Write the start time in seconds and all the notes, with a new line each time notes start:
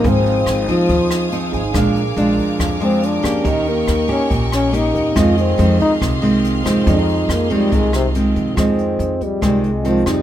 Already playing: F3 C4 D#4
0.01 G#1 G#2 D#4 G#4 F5 D#6, kick, closed hi-hat
0.05 C4 C5 F5 G#5
0.26 closed hi-hat
0.46 G#1, cross-stick, closed hi-hat
0.68 F3 C4 D#4, kick, closed hi-hat
0.89 D#2 D#3, kick, closed hi-hat
1.11 cross-stick, closed hi-hat
1.32 F3 C4 D#4, closed hi-hat
1.51 G#1 D#4 G#4 C5 G#5, kick, closed hi-hat
1.72 A#1 A#2 F3 G#3 D4 G#4 A#4 D6, kick, cross-stick, closed hi-hat
1.76 A#4 F5
1.96 closed hi-hat
2.16 A#1 F3 G#3 D4, closed hi-hat
2.38 kick, closed hi-hat
2.59 F2, kick, cross-stick, closed hi-hat
2.80 F3 G#3 C4 D4, closed hi-hat
3.03 D4, closed hi-hat
3.22 D2 A#3 C#4 D4 G4 G#4 A#4 F5, kick, cross-stick, closed hi-hat
3.41 D#2 D#3 C#4 G4 A#4 D#5 G5 C#6, kick, closed hi-hat
3.47 D#4 D#5
3.67 A#3, closed hi-hat
3.88 D#2, cross-stick, closed hi-hat
4.08 A#3 C#4 G4, kick, closed hi-hat
4.30 A#1 A#2, kick, closed hi-hat
4.52 C#4, cross-stick, closed hi-hat
4.72 A#3 C#4 D#4 G4, closed hi-hat
4.92 E2 C#4 G4 A#4 D#5, kick, closed hi-hat
5.12 F2 D#3 G#3 C4 F4 G#4 F5 C6, kick, cross-stick, closed hi-hat
5.17 F4 G#4 D#5
5.38 C4, closed hi-hat
5.58 F2 D#3 G#3 C4, closed hi-hat
5.80 D#4, kick, closed hi-hat
6.01 C2 C3, kick, cross-stick, closed hi-hat
6.22 D#3 G#3 C4, closed hi-hat
6.45 closed hi-hat
6.64 F2 D#3 G#3 C4 F4 G#4 C5, kick, cross-stick, closed hi-hat
6.84 F2 C4 F4 G#4, kick, closed hi-hat
6.89 D#4 D#5
7.09 closed hi-hat
7.29 F2 A#3, cross-stick, closed hi-hat
7.50 D#3 G3 G#3 C4, kick, closed hi-hat
7.71 C2 C3, kick, closed hi-hat
7.76 G#3
7.93 C3, cross-stick, closed hi-hat
8.15 D#3 G#3 C4, closed hi-hat
8.36 F2, kick, closed hi-hat
8.54 F2 D#3 G#3 C4 F4, kick, cross-stick, closed hi-hat
8.58 C4 G#4 D#5
8.79 closed hi-hat
8.99 F2, closed hi-hat
9.21 G3, kick, closed hi-hat
9.41 C2 C3 D#3 G3 G#3 C4, kick, cross-stick, closed hi-hat
9.64 G#3, closed hi-hat
9.83 D#3 G#3 C4 F4 G#4 D#5, closed hi-hat
9.88 F3
10.06 F2 F3 G3 C4 D#4, kick, cross-stick, closed hi-hat